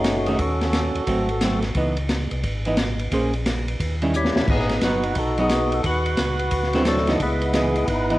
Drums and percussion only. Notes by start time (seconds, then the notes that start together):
0.04 snare, hi-hat pedal, ride
0.26 ride
0.39 kick, ride
0.61 snare, ride
0.73 snare, hi-hat pedal, ride
0.95 ride
1.07 kick, ride
1.29 ride
1.41 snare, hi-hat pedal, ride
1.62 snare, ride
1.74 kick, ride
1.97 ride
2.09 snare, hi-hat pedal, ride
2.31 ride
2.43 kick, ride
2.65 ride
2.77 snare, hi-hat pedal, ride
2.99 ride
3.12 kick, ride
3.33 ride
3.46 snare, hi-hat pedal, ride
3.68 ride
3.80 kick, ride
4.02 ride
4.14 hi-hat pedal
4.25 snare
4.36 snare
4.48 kick, crash
4.59 snare
4.69 snare, ride
4.81 snare, hi-hat pedal, ride
5.03 ride
5.15 kick, ride
5.37 ride
5.49 snare, hi-hat pedal, ride
5.72 ride
5.84 kick, ride
6.06 ride
6.17 snare, hi-hat pedal, ride
6.39 ride
6.51 kick, ride
6.63 snare
6.73 snare, ride
6.85 snare, hi-hat pedal, ride
6.97 snare
7.07 snare, ride
7.20 kick, ride
7.41 ride
7.53 snare, hi-hat pedal, ride
7.76 ride
7.88 kick, ride
8.10 ride